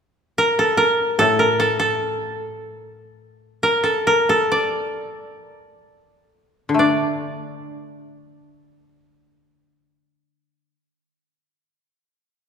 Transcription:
0.38 A#4
0.59 A4
0.77 A#4
1.19 A2 A4
1.39 A#4
1.60 A4
1.79 A4
3.63 A#4
3.84 A4
4.07 A#4
4.29 A4
4.52 D5
6.69 D3
6.74 A3
6.79 D4 D5

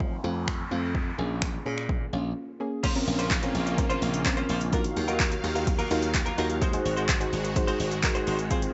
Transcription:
Already playing: F3, noise sweep
0.00 kick
0.24 F2 A3 C4 F4
0.48 finger snap, kick
0.71 F2 A3 C4 F4
0.95 kick
1.18 A#1 A#3 C#4 G#4
1.42 finger snap, kick
1.66 A#2 A#3 C#4 G#4
1.78 finger snap
1.89 kick
2.13 A#1 A#3 C#4 F4
2.60 A#3 C#4 G#4
2.83 C#3 A#3 C#4 F4 C5, kick, closed hi-hat, crash, downlifter, shaker
2.95 C4 C#4 F4 A#4, muted clean electric guitar stroke, closed hi-hat, shaker
3.07 A#1, muted clean electric guitar stroke, open hi-hat, shaker
3.19 A#3 C#4 F4 C5, closed hi-hat, shaker
3.31 muted clean electric guitar stroke, kick, clap, closed hi-hat, shaker
3.43 C4 C#4 F4 A#4, muted clean electric guitar stroke, closed hi-hat, shaker
3.55 A#1, open hi-hat, shaker
3.66 muted clean electric guitar stroke, closed hi-hat, shaker
3.78 C4 C#4 F4 A#4, muted clean electric guitar stroke, kick, closed hi-hat, shaker
3.90 A#3 C#4 F4 C5, closed hi-hat, shaker
4.02 A#1, muted clean electric guitar stroke, open hi-hat, shaker
4.13 muted clean electric guitar stroke, closed hi-hat, shaker
4.25 C4 C#4 F4 A#4, muted clean electric guitar stroke, kick, clap, closed hi-hat, shaker
4.37 A#3 C#4 F4 C5, closed hi-hat, shaker
4.49 A#1 A#3 C#4 F4 C5, open hi-hat, shaker
4.61 muted clean electric guitar stroke, closed hi-hat, shaker
4.72 D#3 F#3 A#3 D#4 F4 F#4 A#4 F5, kick, closed hi-hat, shaker
4.84 muted clean electric guitar stroke, closed hi-hat, shaker
4.96 D#2, muted clean electric guitar stroke, open hi-hat, shaker
5.08 F#3 A#3 D#4 F4 F#4 A#4, closed hi-hat, shaker
5.20 muted clean electric guitar stroke, kick, clap, closed hi-hat, shaker
5.32 muted clean electric guitar stroke, closed hi-hat, shaker
5.44 D#2, open hi-hat, shaker
5.55 D#4 F4 F#4 A#4, muted clean electric guitar stroke, closed hi-hat, shaker
5.67 muted clean electric guitar stroke, kick, closed hi-hat, shaker
5.79 F#3 A#3 F4 A#4, closed hi-hat, shaker
5.91 D#2 D#4 F4 F#4 A#4, open hi-hat, shaker
6.02 muted clean electric guitar stroke, closed hi-hat, shaker
6.14 muted clean electric guitar stroke, kick, clap, closed hi-hat, shaker
6.26 F#3 A#3 F4 A#4, closed hi-hat, shaker
6.37 D#2 F#3 A#3 D#4 F4 F#4 A#4, open hi-hat, shaker
6.49 muted clean electric guitar stroke, closed hi-hat, shaker
6.61 D#3 G#3 D#4 F#4 C5, kick, closed hi-hat, shaker
6.73 D#4 F#4 G#4 C5, muted clean electric guitar stroke, closed hi-hat, shaker
6.85 G#1, muted clean electric guitar stroke, open hi-hat, shaker
6.97 G#3 D#4 F#4 C5, closed hi-hat, shaker
7.08 muted clean electric guitar stroke, kick, clap, closed hi-hat, shaker
7.20 D#4 F#4 G#4 C5, muted clean electric guitar stroke, closed hi-hat, shaker
7.33 G#1, open hi-hat, shaker
7.44 muted clean electric guitar stroke, closed hi-hat, shaker
7.56 D#4 F#4 G#4 C5, muted clean electric guitar stroke, kick, closed hi-hat, shaker
7.67 G#3 D#4 F#4 C5, closed hi-hat, shaker
7.80 G#1, muted clean electric guitar stroke, open hi-hat, shaker
7.91 muted clean electric guitar stroke, closed hi-hat, shaker
8.03 D#4 F#4 G#4 A#4, muted clean electric guitar stroke, kick, clap, closed hi-hat, shaker
8.15 G#3 D#4 F#4 C5, closed hi-hat, shaker
8.27 G#1 G#3 D#4 F#4 C5, open hi-hat, shaker
8.39 muted clean electric guitar stroke, closed hi-hat, shaker
8.50 C4 F4 G#4 C5, kick, closed hi-hat, shaker
8.62 muted clean electric guitar stroke, closed hi-hat, shaker

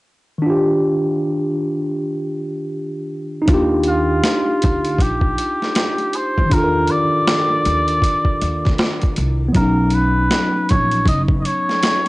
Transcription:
0.38 D#3 D4
0.46 F4 G4
3.42 D#4
3.46 D#2 D4, kick, closed hi-hat
3.50 F4 G4
3.83 F4, closed hi-hat
4.24 snare, closed hi-hat
4.62 D2, kick, closed hi-hat
4.85 closed hi-hat
4.98 A#1 G4, kick, closed hi-hat
5.21 kick
5.38 closed hi-hat
5.62 snare
5.75 snare, closed hi-hat
5.98 closed hi-hat
6.13 C5, closed hi-hat
6.38 E2, kick
6.46 D#3
6.50 D4 F4 A#4, kick, closed hi-hat
6.58 A4
6.64 A#4
6.88 D5, closed hi-hat
7.28 snare, closed hi-hat
7.65 D#2, closed hi-hat
7.88 closed hi-hat
8.02 kick, closed hi-hat
8.25 kick
8.42 D#2, closed hi-hat
8.65 kick, snare
8.78 snare, closed hi-hat
9.02 kick, closed hi-hat
9.16 C2, closed hi-hat
9.49 B3
9.53 B1 F#3 C#4 A#4, kick, closed hi-hat
9.61 D#4
9.90 B4, closed hi-hat
10.31 snare, closed hi-hat
10.69 A#1 C#5, kick, closed hi-hat
10.91 closed hi-hat
11.06 F#1 D#5, kick, closed hi-hat
11.28 kick
11.41 D#5
11.45 C#5, closed hi-hat
11.69 snare
11.83 snare, closed hi-hat

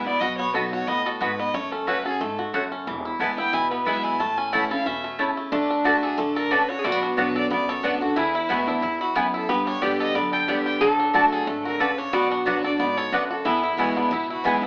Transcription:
Already playing: B2 E4
0.05 B3 E4 D5
0.20 B1 B2 F#4 D#5
0.38 B3 C#5
0.54 B1 F#3 B3 D#4 F#4 A4 D#5 B5
0.72 F#4 C#5
0.87 A1 A2 B3 D#5
1.06 F#4 A4
1.21 G#1 G#2 B3 F#4 B4 D#5 B5
1.39 B3 D#5
1.54 F#1 F#2 A3 C#5
1.72 C#4 A4
1.87 F#3 A3 C#4 F#4 B4 C#5 F#5
2.05 C#4 F#4 G#4 A4
2.21 G#1 G#2 A3 A4
2.39 F#4
2.54 F#1 F#2 A3 F#4 A4 C#5 F#5
2.72 C#4
2.87 E1 E2 E3
3.05 E4
3.19 D2 E3 G#3 B3 E4 B4 G#5 A5
3.37 B3 E4 G5
3.53 C#2 B2 E4 G#5
3.71 B3 B4
3.85 B1 E3 G#3 B3 E4 B4 E5 G#5
4.04 E4 G#5
4.19 A1 A2 A3 A5
4.37 C#4 G#5
4.53 E3 A3 C#4 E4 C#5 F#5 A5
4.70 C#4 E4 A4 F5
4.86 E2 B2 C#4 E5
5.04 A3
5.19 C#3 A3 E4 C#5 A5
5.37 A3
5.52 D2 D3 A3 D4
5.70 D4
5.84 D3 A3 D4 F#4 D5 A5
6.03 G#4 A4
6.18 A1 D3 A3 A4
6.36 A4 A#4
6.51 A3 C#4 D4 F#4 B4 D5 A5
6.69 F#4 C#5
6.79 G#4
6.84 B1 B2 A3 F#4 D5
6.92 B3
7.03 D4 F#4
7.17 B1 F#3 B3 D4 F#4 B4 D5 F#5
7.35 A4 D5
7.50 C#2 F#2 B3 D5
7.69 A4 C#5
7.83 D2 F#3 B3 D4 F#4 B4 D5 F#5
8.01 D4 F#4 A4
8.16 E2 E4 G#4
8.35 E4
8.49 D2 E3 G#3 B3 E4 F#4 B4 G#5
8.67 B3 D4 E4
8.82 E2 E4
9.00 E4 F#4
9.15 F#2 B3 E4 G#4 B4 G#5
9.34 E4 A4
9.49 G2 B3 G4 B4
9.67 D4 C#5
9.82 G2 D3 G3 B3 G4 D5 G5
10.00 A4 D#5
10.15 F#2 D3 B3 D5
10.32 A4 G5
10.48 E2 D3 G3 B3 D4 G4 D5 G5
10.66 G4 G5
10.81 D2 D3 F#3 A4
10.99 D4
11.13 F#1 D3 A3 D4 F#4 D5 A5
11.32 G#4 A4
11.47 G#1 D3 A3 A4
11.65 F#4 A#4
11.70 G#4
11.80 A1 C#3 A3 F#4 A4 B4 D5 A5
11.98 D4 C#5
12.13 B1 B2 B3 F#4 D5
12.31 D4 F#4
12.46 F#3 B3 D4 F#4 B4 D5 F#5
12.64 D4 F#4 A4 D5
12.78 C#2 G#2 B3 D5
12.98 A4 C#5
13.12 D2 F#2 B3 D4 F#4 B4 D5 F#5
13.31 F#4 A4
13.45 E2 B3 E4 G#4
13.64 E4
13.77 D2 E3 G#3 B3 E4 F#4 B4 G#5
13.97 B3 D4
14.11 C#2 B2 E4
14.30 E4 F#4
14.44 B1 E3 G#3 B3 E4 G#4 B4 G#5
14.62 B3 E4 A4

